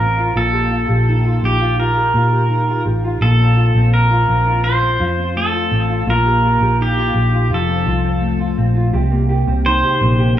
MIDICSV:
0, 0, Header, 1, 4, 480
1, 0, Start_track
1, 0, Tempo, 714286
1, 243, Time_signature, 4, 2, 24, 8
1, 6985, End_track
2, 0, Start_track
2, 0, Title_t, "Pedal steel guitar"
2, 0, Program_c, 0, 26
2, 0, Note_on_c, 0, 70, 83
2, 246, Note_off_c, 0, 70, 0
2, 249, Note_on_c, 0, 69, 90
2, 976, Note_on_c, 0, 67, 75
2, 987, Note_off_c, 0, 69, 0
2, 1207, Note_on_c, 0, 70, 78
2, 1216, Note_off_c, 0, 67, 0
2, 1898, Note_off_c, 0, 70, 0
2, 2165, Note_on_c, 0, 69, 95
2, 2642, Note_off_c, 0, 69, 0
2, 2645, Note_on_c, 0, 70, 87
2, 3097, Note_off_c, 0, 70, 0
2, 3118, Note_on_c, 0, 72, 93
2, 3607, Note_off_c, 0, 72, 0
2, 3609, Note_on_c, 0, 69, 83
2, 4097, Note_off_c, 0, 69, 0
2, 4100, Note_on_c, 0, 70, 95
2, 4544, Note_off_c, 0, 70, 0
2, 4584, Note_on_c, 0, 67, 78
2, 5067, Note_off_c, 0, 67, 0
2, 5069, Note_on_c, 0, 69, 73
2, 5749, Note_off_c, 0, 69, 0
2, 6492, Note_on_c, 0, 72, 98
2, 6940, Note_off_c, 0, 72, 0
2, 6985, End_track
3, 0, Start_track
3, 0, Title_t, "Clean electric guitar"
3, 0, Program_c, 1, 27
3, 0, Note_on_c, 1, 60, 53
3, 0, Note_on_c, 1, 65, 55
3, 114, Note_off_c, 1, 65, 0
3, 117, Note_on_c, 1, 65, 62
3, 235, Note_on_c, 1, 46, 72
3, 238, Note_off_c, 1, 65, 0
3, 241, Note_on_c, 1, 65, 64
3, 352, Note_off_c, 1, 60, 0
3, 354, Note_on_c, 1, 67, 49
3, 475, Note_off_c, 1, 65, 0
3, 477, Note_on_c, 1, 65, 57
3, 590, Note_off_c, 1, 67, 0
3, 598, Note_on_c, 1, 67, 55
3, 726, Note_on_c, 1, 51, 64
3, 839, Note_off_c, 1, 65, 0
3, 842, Note_on_c, 1, 65, 61
3, 957, Note_off_c, 1, 67, 0
3, 965, Note_on_c, 1, 67, 55
3, 1079, Note_off_c, 1, 65, 0
3, 1081, Note_on_c, 1, 65, 59
3, 1199, Note_off_c, 1, 46, 0
3, 1201, Note_off_c, 1, 65, 0
3, 1204, Note_on_c, 1, 65, 63
3, 1315, Note_off_c, 1, 67, 0
3, 1323, Note_on_c, 1, 67, 55
3, 1445, Note_off_c, 1, 65, 0
3, 1447, Note_on_c, 1, 65, 62
3, 1557, Note_off_c, 1, 67, 0
3, 1565, Note_on_c, 1, 67, 51
3, 1670, Note_off_c, 1, 51, 0
3, 1679, Note_on_c, 1, 51, 58
3, 1796, Note_off_c, 1, 65, 0
3, 1799, Note_on_c, 1, 65, 54
3, 1910, Note_off_c, 1, 67, 0
3, 1918, Note_on_c, 1, 67, 52
3, 2043, Note_off_c, 1, 65, 0
3, 2046, Note_on_c, 1, 65, 61
3, 2164, Note_on_c, 1, 46, 75
3, 2166, Note_off_c, 1, 65, 0
3, 2168, Note_on_c, 1, 65, 62
3, 2208, Note_off_c, 1, 67, 0
3, 2209, Note_off_c, 1, 51, 0
3, 2279, Note_on_c, 1, 60, 52
3, 2397, Note_off_c, 1, 65, 0
3, 2399, Note_on_c, 1, 65, 61
3, 2514, Note_off_c, 1, 60, 0
3, 2517, Note_on_c, 1, 60, 56
3, 2758, Note_off_c, 1, 65, 0
3, 2761, Note_on_c, 1, 65, 61
3, 2882, Note_off_c, 1, 60, 0
3, 2884, Note_on_c, 1, 60, 54
3, 3000, Note_off_c, 1, 65, 0
3, 3003, Note_on_c, 1, 65, 63
3, 3123, Note_off_c, 1, 46, 0
3, 3127, Note_off_c, 1, 65, 0
3, 3130, Note_on_c, 1, 65, 63
3, 3241, Note_off_c, 1, 60, 0
3, 3244, Note_on_c, 1, 60, 57
3, 3358, Note_off_c, 1, 65, 0
3, 3361, Note_on_c, 1, 65, 62
3, 3486, Note_off_c, 1, 60, 0
3, 3488, Note_on_c, 1, 60, 56
3, 3603, Note_on_c, 1, 57, 60
3, 3716, Note_off_c, 1, 65, 0
3, 3719, Note_on_c, 1, 65, 57
3, 3839, Note_off_c, 1, 60, 0
3, 3842, Note_on_c, 1, 60, 51
3, 3961, Note_off_c, 1, 65, 0
3, 3964, Note_on_c, 1, 65, 61
3, 4079, Note_off_c, 1, 65, 0
3, 4079, Note_on_c, 1, 46, 80
3, 4082, Note_on_c, 1, 65, 68
3, 4131, Note_off_c, 1, 57, 0
3, 4205, Note_off_c, 1, 60, 0
3, 4208, Note_on_c, 1, 67, 50
3, 4318, Note_off_c, 1, 65, 0
3, 4320, Note_on_c, 1, 65, 58
3, 4442, Note_off_c, 1, 67, 0
3, 4444, Note_on_c, 1, 67, 54
3, 4565, Note_on_c, 1, 51, 60
3, 4676, Note_off_c, 1, 65, 0
3, 4684, Note_on_c, 1, 65, 63
3, 4798, Note_off_c, 1, 67, 0
3, 4801, Note_on_c, 1, 67, 54
3, 4916, Note_off_c, 1, 65, 0
3, 4924, Note_on_c, 1, 65, 60
3, 5038, Note_off_c, 1, 65, 0
3, 5041, Note_off_c, 1, 46, 0
3, 5042, Note_on_c, 1, 41, 73
3, 5046, Note_on_c, 1, 65, 61
3, 5161, Note_off_c, 1, 67, 0
3, 5163, Note_on_c, 1, 60, 56
3, 5273, Note_off_c, 1, 65, 0
3, 5282, Note_on_c, 1, 65, 60
3, 5302, Note_off_c, 1, 51, 0
3, 5402, Note_off_c, 1, 60, 0
3, 5404, Note_on_c, 1, 60, 49
3, 5519, Note_on_c, 1, 57, 61
3, 5630, Note_off_c, 1, 65, 0
3, 5638, Note_on_c, 1, 65, 54
3, 5759, Note_off_c, 1, 60, 0
3, 5761, Note_on_c, 1, 60, 51
3, 5873, Note_off_c, 1, 65, 0
3, 5881, Note_on_c, 1, 65, 57
3, 6000, Note_on_c, 1, 48, 81
3, 6002, Note_off_c, 1, 65, 0
3, 6004, Note_on_c, 1, 67, 70
3, 6049, Note_off_c, 1, 57, 0
3, 6051, Note_off_c, 1, 41, 0
3, 6121, Note_on_c, 1, 58, 57
3, 6141, Note_off_c, 1, 60, 0
3, 6241, Note_off_c, 1, 67, 0
3, 6243, Note_on_c, 1, 67, 67
3, 6369, Note_on_c, 1, 60, 60
3, 6491, Note_on_c, 1, 51, 76
3, 6609, Note_off_c, 1, 67, 0
3, 6611, Note_on_c, 1, 67, 70
3, 6727, Note_off_c, 1, 58, 0
3, 6729, Note_on_c, 1, 58, 62
3, 6842, Note_off_c, 1, 67, 0
3, 6845, Note_on_c, 1, 67, 67
3, 6956, Note_off_c, 1, 48, 0
3, 6964, Note_on_c, 1, 48, 84
3, 6967, Note_off_c, 1, 67, 0
3, 6985, Note_off_c, 1, 48, 0
3, 6985, Note_off_c, 1, 51, 0
3, 6985, Note_off_c, 1, 58, 0
3, 6985, Note_off_c, 1, 60, 0
3, 6985, End_track
4, 0, Start_track
4, 0, Title_t, "Fingered electric bass"
4, 0, Program_c, 2, 33
4, 0, Note_on_c, 2, 33, 76
4, 227, Note_off_c, 2, 33, 0
4, 237, Note_on_c, 2, 34, 97
4, 582, Note_off_c, 2, 34, 0
4, 597, Note_on_c, 2, 34, 78
4, 942, Note_off_c, 2, 34, 0
4, 957, Note_on_c, 2, 34, 87
4, 1415, Note_off_c, 2, 34, 0
4, 1439, Note_on_c, 2, 46, 85
4, 1897, Note_off_c, 2, 46, 0
4, 1919, Note_on_c, 2, 33, 83
4, 2149, Note_off_c, 2, 33, 0
4, 2155, Note_on_c, 2, 34, 94
4, 2501, Note_off_c, 2, 34, 0
4, 2519, Note_on_c, 2, 34, 84
4, 2863, Note_off_c, 2, 34, 0
4, 2879, Note_on_c, 2, 34, 91
4, 3337, Note_off_c, 2, 34, 0
4, 3360, Note_on_c, 2, 41, 91
4, 3817, Note_off_c, 2, 41, 0
4, 3840, Note_on_c, 2, 33, 78
4, 4069, Note_off_c, 2, 33, 0
4, 4079, Note_on_c, 2, 34, 98
4, 4423, Note_off_c, 2, 34, 0
4, 4441, Note_on_c, 2, 34, 79
4, 4784, Note_off_c, 2, 34, 0
4, 4800, Note_on_c, 2, 34, 88
4, 5029, Note_off_c, 2, 34, 0
4, 5041, Note_on_c, 2, 29, 91
4, 5270, Note_off_c, 2, 29, 0
4, 5283, Note_on_c, 2, 36, 84
4, 5739, Note_off_c, 2, 36, 0
4, 5766, Note_on_c, 2, 34, 69
4, 5992, Note_off_c, 2, 34, 0
4, 6007, Note_on_c, 2, 36, 103
4, 6347, Note_off_c, 2, 36, 0
4, 6365, Note_on_c, 2, 36, 91
4, 6592, Note_off_c, 2, 36, 0
4, 6727, Note_on_c, 2, 34, 90
4, 6985, Note_off_c, 2, 34, 0
4, 6985, End_track
0, 0, End_of_file